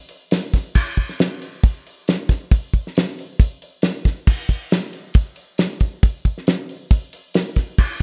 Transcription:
0.09 open hi-hat medium
0.31 snare loud
0.31 open hi-hat loud
0.31 tambourine loud
0.54 kick medium
0.54 snare soft
0.54 open hi-hat medium
0.75 kick loud
0.75 crash loud
0.97 kick medium
0.97 open hi-hat medium
1.09 snare soft
1.19 snare loud
1.19 open hi-hat medium
1.19 tambourine medium
1.42 open hi-hat medium
1.64 kick loud
1.64 open hi-hat medium
1.87 open hi-hat medium
2.08 snare loud
2.08 open hi-hat loud
2.08 tambourine loud
2.29 kick medium
2.29 snare soft
2.29 open hi-hat medium
2.51 kick loud
2.51 open hi-hat medium
2.74 kick medium
2.74 open hi-hat medium
2.87 snare soft
2.95 snare loud
2.95 open hi-hat medium
2.95 tambourine loud
3.19 open hi-hat medium
3.40 kick loud
3.40 open hi-hat loud
3.62 open hi-hat medium
3.82 snare loud
3.82 open hi-hat loud
3.82 tambourine loud
4.05 kick loud
4.05 snare soft
4.05 open hi-hat medium
4.27 kick loud
4.27 crash loud
4.49 kick medium
4.49 open hi-hat medium
4.71 snare loud
4.71 open hi-hat medium
4.71 tambourine loud
4.93 open hi-hat medium
5.14 kick loud
5.14 open hi-hat loud
5.36 open hi-hat medium
5.58 snare loud
5.58 open hi-hat medium
5.58 tambourine loud
5.80 kick medium
5.80 open hi-hat medium
6.03 kick loud
6.03 open hi-hat medium
6.25 kick medium
6.25 open hi-hat medium
6.38 snare soft
6.47 snare loud
6.47 open hi-hat medium
6.47 tambourine loud
6.69 open hi-hat medium
6.91 kick loud
6.91 open hi-hat loud
7.13 open hi-hat medium
7.34 snare loud
7.34 open hi-hat loud
7.34 tambourine medium
7.56 kick medium
7.56 snare soft
7.56 open hi-hat medium
7.78 kick loud
7.78 crash loud

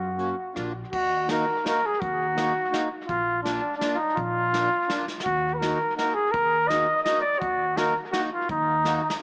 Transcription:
0.00 0.30 F#2 medium
0.00 0.56 F#4 medium
0.18 0.35 A#3 soft
0.18 0.35 C#4 soft
0.18 0.36 F#4 medium
0.18 closed hi-hat soft
0.54 0.80 A#1 medium
0.54 0.72 A#3 medium
0.54 0.73 D4 medium
0.54 0.72 F4 medium
0.54 cross-stick soft
0.54 closed hi-hat soft
0.92 1.40 D#2 medium
0.92 1.32 F#4 medium
0.92 kick medium
0.92 crash medium
1.28 1.45 A#3 medium
1.28 1.45 D#4 soft
1.28 1.45 F#4 medium
1.28 1.66 A#4 medium
1.28 snare medium
1.28 closed hi-hat soft
1.63 1.81 A#3 medium
1.63 1.81 D#4 soft
1.63 1.81 F#4 medium
1.63 1.87 A#4 medium
1.63 snare medium
1.63 closed hi-hat soft
1.86 2.02 G#4 medium
2.00 2.48 D#2 medium
2.00 2.90 F#4 medium
2.00 kick medium
2.00 closed hi-hat soft
2.36 2.53 A#3 medium
2.36 2.53 D#4 medium
2.36 2.53 F#4 medium
2.36 snare medium
2.36 closed hi-hat soft
2.71 2.88 A#3 medium
2.71 2.89 D#4 medium
2.71 2.89 F#4 medium
2.71 snare medium
2.71 closed hi-hat soft
3.06 3.56 A#1 medium
3.06 3.41 F4 loud
3.06 kick medium
3.06 closed hi-hat soft
3.43 3.61 A#3 medium
3.43 3.77 D4 medium
3.43 3.61 D4 soft
3.43 3.61 F4 medium
3.43 snare medium
3.43 closed hi-hat soft
3.77 3.96 A#3 medium
3.77 3.96 D4 medium
3.77 3.97 D4 medium
3.77 3.97 F4 medium
3.77 snare medium
3.77 closed hi-hat soft
3.94 4.18 D#4 medium
3.94 3.98 F4 medium
4.16 4.64 A#1 medium
4.16 5.07 F4 medium
4.16 kick medium
4.16 closed hi-hat soft
4.51 4.69 A#3 medium
4.51 4.69 D4 soft
4.51 4.69 F4 medium
4.51 snare medium
4.51 closed hi-hat soft
4.88 5.05 A#3 medium
4.88 5.05 D4 medium
4.88 5.06 F4 medium
4.88 snare medium
4.88 closed hi-hat soft
5.08 snare soft
5.20 5.55 F#4 loud
5.20 snare soft
5.26 5.73 D#2 medium
5.26 kick medium
5.26 closed hi-hat soft
5.54 5.60 B4 medium
5.58 5.78 A#3 medium
5.58 5.78 D#4 soft
5.58 5.78 F#4 medium
5.58 5.95 A#4 medium
5.62 snare medium
5.62 closed hi-hat soft
5.96 6.14 A#3 medium
5.96 6.14 D#4 soft
5.96 6.14 F#4 medium
5.96 6.16 A#4 medium
5.96 snare medium
5.96 closed hi-hat soft
6.14 6.33 G#4 loud
6.32 6.81 D#2 medium
6.32 6.70 A#4 loud
6.32 kick medium
6.32 closed hi-hat soft
6.68 6.86 A#3 medium
6.68 6.87 D#4 soft
6.68 6.87 F#4 medium
6.68 7.03 D#5 medium
6.68 snare medium
6.68 closed hi-hat soft
7.03 7.22 A#3 medium
7.03 7.22 D#4 medium
7.03 7.23 F#4 medium
7.03 7.21 D#5 loud
7.03 snare medium
7.03 closed hi-hat soft
7.21 7.41 D5 medium
7.39 7.88 D#2 medium
7.39 7.79 F#4 loud
7.39 kick medium
7.39 closed hi-hat soft
7.76 7.93 A#3 medium
7.76 7.93 D#4 medium
7.76 7.94 F#4 medium
7.76 7.96 A#4 medium
7.76 snare medium
7.76 closed hi-hat soft
8.11 8.29 A#3 medium
8.11 8.29 D#4 soft
8.11 8.20 F#4 medium
8.11 8.30 F#4 medium
8.11 snare medium
8.11 closed hi-hat soft
8.33 8.49 F4 medium
8.49 8.96 D#2 medium
8.49 9.18 D#4 medium
8.49 kick medium
8.49 closed hi-hat soft
8.83 9.01 A#3 soft
8.83 9.01 D#4 soft
8.83 9.02 F#4 medium
8.83 snare soft
9.10 snare medium

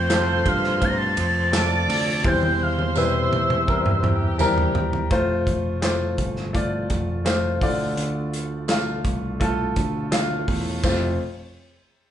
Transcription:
0.00 0.42 F2 loud
0.00 5.06 C3 medium
0.00 2.21 F3 medium
0.00 0.09 A3 medium
0.00 2.21 A3 medium
0.00 0.10 C4 medium
0.00 0.10 F4 medium
0.00 2.21 F4 medium
0.00 0.83 C5 medium
0.00 1.49 C5 medium
0.00 1.49 C6 medium
0.00 0.49 G6 loud
0.09 0.65 A3 medium
0.09 0.66 C4 medium
0.09 0.66 F4 medium
0.09 0.66 A4 medium
0.09 snare loud
0.09 clap medium
0.09 ride medium
0.09 tambourine medium
0.46 1.13 G2 loud
0.46 0.86 F6 loud
0.46 kick medium
0.46 ride medium
0.64 snare soft
0.81 1.37 A3 medium
0.81 1.37 C4 medium
0.81 1.38 F4 medium
0.81 1.38 C5 medium
0.81 0.90 A6 loud
0.81 kick medium
0.81 ride medium
0.88 0.99 A#6 loud
0.98 2.29 A6 loud
1.17 1.85 F2 loud
1.17 ride medium
1.52 2.08 A3 medium
1.52 2.09 C4 medium
1.52 2.09 F4 medium
1.52 2.09 A4 medium
1.52 2.23 D5 medium
1.52 2.23 D6 loud
1.52 snare loud
1.52 clap medium
1.52 ride medium
1.52 tambourine medium
1.89 2.22 D2 medium
1.89 open hi-hat medium
1.89 ride medium
2.24 3.28 E2 loud
2.24 3.28 E3 medium
2.24 5.08 E3 medium
2.24 2.80 G3 medium
2.24 5.08 G3 medium
2.24 2.81 C4 medium
2.24 5.08 E4 medium
2.24 2.81 E4 medium
2.24 2.81 C5 medium
2.24 4.01 C5 medium
2.24 4.01 C6 medium
2.24 2.64 G6 loud
2.24 kick loud
2.24 high tom medium
2.43 high tom medium
2.62 2.97 F6 medium
2.79 high tom medium
2.95 3.52 G3 medium
2.95 3.52 C4 medium
2.95 3.53 E4 medium
2.95 3.04 B4 medium
2.95 4.72 E6 medium
2.95 mid tom medium
2.95 tambourine medium
3.04 3.56 C5 medium
3.31 3.99 E2 medium
3.31 mid tom medium
3.50 mid tom medium
3.67 4.23 G3 medium
3.67 4.24 C4 medium
3.67 4.24 E4 medium
3.67 4.24 A#4 medium
3.67 kick medium
3.86 mid tom medium
4.03 4.71 E2 loud
4.03 5.09 G4 medium
4.03 5.09 G5 medium
4.03 mid tom medium
4.38 4.95 G3 medium
4.38 4.95 C4 medium
4.38 4.96 E4 medium
4.38 4.96 A#4 loud
4.38 floor tom loud
4.38 tambourine medium
4.58 floor tom medium
4.74 5.08 E2 medium
4.74 floor tom loud
4.93 floor tom loud
5.11 6.14 F1 medium
5.11 7.59 C3 medium
5.11 7.59 F3 medium
5.11 5.67 A3 loud
5.11 10.80 A3 medium
5.11 5.67 F4 medium
5.11 10.80 F4 medium
5.11 5.68 C5 loud
5.11 kick loud
5.11 closed hi-hat medium
5.47 kick medium
5.47 closed hi-hat medium
5.82 6.38 A3 medium
5.82 6.39 F4 medium
5.82 6.39 C5 medium
5.82 snare loud
5.82 clap medium
5.82 closed hi-hat medium
5.82 tambourine medium
6.18 6.86 G1 medium
6.18 kick medium
6.18 closed hi-hat medium
6.36 snare soft
6.53 7.10 A3 medium
6.53 7.10 F4 medium
6.53 7.11 D5 medium
6.53 kick medium
6.53 closed hi-hat medium
6.90 7.58 F1 medium
6.90 kick medium
6.90 closed hi-hat medium
7.25 7.60 A3 medium
7.25 7.60 F4 medium
7.25 7.62 C5 medium
7.25 snare medium
7.25 clap medium
7.25 closed hi-hat medium
7.25 tambourine medium
7.61 7.95 D2 medium
7.61 8.65 D3 medium
7.61 10.81 D3 medium
7.61 8.47 A3 medium
7.61 8.48 F4 medium
7.61 8.48 D5 medium
7.61 kick medium
7.61 open hi-hat medium
7.97 9.01 D2 loud
7.97 closed hi-hat medium
8.34 closed hi-hat medium
8.68 9.25 A3 medium
8.68 9.25 F4 medium
8.68 9.26 F5 medium
8.68 snare loud
8.68 clap medium
8.68 closed hi-hat medium
8.68 tambourine medium
9.05 9.72 C2 medium
9.05 kick medium
9.05 closed hi-hat medium
9.40 9.96 A3 medium
9.40 9.97 F4 medium
9.40 9.97 A4 medium
9.40 kick medium
9.40 closed hi-hat medium
9.76 10.44 D2 loud
9.76 kick medium
9.76 closed hi-hat medium
10.11 10.68 A3 medium
10.11 10.68 F4 medium
10.11 10.69 F5 loud
10.11 snare loud
10.11 clap medium
10.11 closed hi-hat medium
10.11 tambourine medium
10.48 10.81 E2 medium
10.48 kick medium
10.48 open hi-hat medium
10.82 11.17 F1 medium
10.82 11.17 F2 medium
10.82 11.16 C3 medium
10.82 11.16 F3 medium
10.82 11.16 A3 medium
10.82 11.17 A3 medium
10.82 11.16 F4 medium
10.82 11.17 F4 medium
10.82 11.17 C5 medium
10.82 kick medium
10.82 crash medium
10.82 tambourine medium

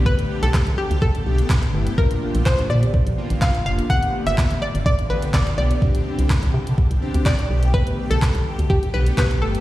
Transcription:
0.00 0.11 B1 loud
0.00 1.94 D3 medium
0.00 0.59 A3 medium
0.00 1.96 A3 medium
0.00 0.59 B3 medium
0.00 1.96 B3 medium
0.00 0.59 G4 medium
0.00 1.94 G4 medium
0.06 0.44 B4 loud
0.06 kick loud
0.19 closed hi-hat medium
0.43 0.49 B1 medium
0.43 0.76 A4 medium
0.43 closed hi-hat medium
0.54 kick loud
0.54 snare medium
0.54 clap loud
0.67 0.74 B1 medium
0.67 closed hi-hat medium
0.78 1.03 G4 medium
0.91 0.97 D2 loud
0.91 closed hi-hat medium
1.02 1.16 A1 loud
1.02 2.01 A4 loud
1.02 kick loud
1.15 closed hi-hat medium
1.26 1.41 B1 loud
1.26 1.62 A3 medium
1.26 1.62 B3 medium
1.26 1.62 G4 medium
1.38 closed hi-hat medium
1.50 1.64 B1 medium
1.50 kick loud
1.50 snare medium
1.50 clap loud
1.63 closed hi-hat soft
1.74 1.89 G1 loud
1.74 1.92 A3 medium
1.74 1.92 B3 medium
1.74 1.92 E4 medium
1.87 closed hi-hat medium
1.98 2.12 A#1 loud
1.98 9.60 D3 medium
1.98 3.88 F3 medium
1.98 2.69 A#3 medium
1.98 3.88 A#3 medium
1.98 2.69 D4 medium
1.98 3.88 F4 medium
1.98 2.69 F4 medium
1.98 2.43 A#4 loud
1.98 kick loud
2.11 closed hi-hat medium
2.35 2.41 A#1 medium
2.35 closed hi-hat medium
2.46 2.71 C5 loud
2.46 kick loud
2.46 snare medium
2.46 clap loud
2.59 2.65 A#1 medium
2.59 closed hi-hat medium
2.70 2.84 A#2 loud
2.70 3.44 D5 loud
2.83 closed hi-hat medium
2.94 kick loud
3.07 3.13 A#1 medium
3.07 closed hi-hat medium
3.18 3.54 A#3 medium
3.18 3.54 D4 medium
3.18 3.54 F4 medium
3.30 3.37 A1 medium
3.30 closed hi-hat medium
3.42 3.56 A#1 loud
3.42 3.65 F5 loud
3.42 kick loud
3.42 snare medium
3.42 clap loud
3.55 closed hi-hat soft
3.66 3.80 F1 medium
3.66 3.84 A#3 medium
3.66 3.84 D4 medium
3.66 3.84 F4 medium
3.66 3.77 F5 loud
3.79 closed hi-hat medium
3.90 4.04 G1 loud
3.90 4.61 A3 medium
3.90 5.80 A3 medium
3.90 5.80 B3 medium
3.90 4.61 B3 medium
3.90 5.80 G4 medium
3.90 4.61 G4 medium
3.90 4.28 F#5 loud
3.90 kick loud
4.03 closed hi-hat medium
4.27 4.33 G1 loud
4.27 4.63 E5 loud
4.27 closed hi-hat medium
4.38 kick loud
4.38 snare medium
4.38 clap loud
4.51 4.57 A1 medium
4.51 closed hi-hat medium
4.62 4.85 D5 loud
4.75 4.81 G1 medium
4.75 closed hi-hat medium
4.86 5.00 A1 loud
4.86 5.08 D5 loud
4.86 kick loud
4.99 closed hi-hat medium
5.10 5.24 A1 medium
5.10 5.46 A3 medium
5.10 5.46 B3 medium
5.10 5.46 G4 medium
5.10 5.35 B4 loud
5.22 closed hi-hat medium
5.34 5.48 G1 medium
5.34 5.56 D5 loud
5.34 kick loud
5.34 snare medium
5.34 clap loud
5.47 closed hi-hat soft
5.58 5.72 B1 medium
5.58 5.76 A3 medium
5.58 5.76 B3 medium
5.58 5.76 G4 medium
5.58 6.50 D5 medium
5.71 closed hi-hat medium
5.82 5.96 C2 loud
5.82 7.48 G3 medium
5.82 6.53 C4 medium
5.82 7.48 C4 medium
5.82 6.53 D4 medium
5.82 9.60 G4 medium
5.82 6.53 G4 medium
5.82 kick loud
5.95 closed hi-hat medium
6.19 6.26 C2 loud
6.19 closed hi-hat medium
6.30 kick loud
6.30 snare medium
6.30 clap loud
6.43 6.49 C2 loud
6.43 closed hi-hat medium
6.54 6.68 C3 loud
6.67 closed hi-hat medium
6.78 kick loud
6.91 6.97 C2 medium
6.91 closed hi-hat medium
7.02 7.38 C4 medium
7.02 7.38 D4 medium
7.02 7.38 G4 loud
7.14 7.22 D2 loud
7.14 closed hi-hat medium
7.26 7.40 C2 loud
7.26 7.71 D5 loud
7.26 kick loud
7.26 snare medium
7.26 clap loud
7.39 closed hi-hat soft
7.50 7.79 B1 loud
7.50 8.27 A3 medium
7.50 9.60 A3 medium
7.50 9.60 B3 medium
7.50 8.27 B3 medium
7.50 8.27 G4 medium
7.63 closed hi-hat medium
7.74 8.12 B4 loud
7.74 kick loud
7.87 closed hi-hat medium
8.11 8.17 B1 medium
8.11 8.66 A4 loud
8.11 closed hi-hat medium
8.22 kick loud
8.22 snare medium
8.22 clap loud
8.35 8.41 B1 loud
8.35 closed hi-hat medium
8.59 8.66 D2 medium
8.59 closed hi-hat medium
8.70 8.84 A1 loud
8.70 8.95 G4 medium
8.70 kick loud
8.83 closed hi-hat soft
8.94 9.08 B1 loud
8.94 9.30 A3 medium
8.94 9.30 B3 medium
8.94 9.30 G4 medium
8.94 9.17 B4 loud
9.06 closed hi-hat medium
9.18 9.43 B1 loud
9.18 9.43 B4 loud
9.18 kick loud
9.18 snare medium
9.18 clap loud
9.31 closed hi-hat soft
9.42 9.56 G1 medium
9.42 9.60 A3 medium
9.42 9.60 B3 medium
9.42 9.60 G4 medium
9.42 9.60 A4 medium
9.55 closed hi-hat medium

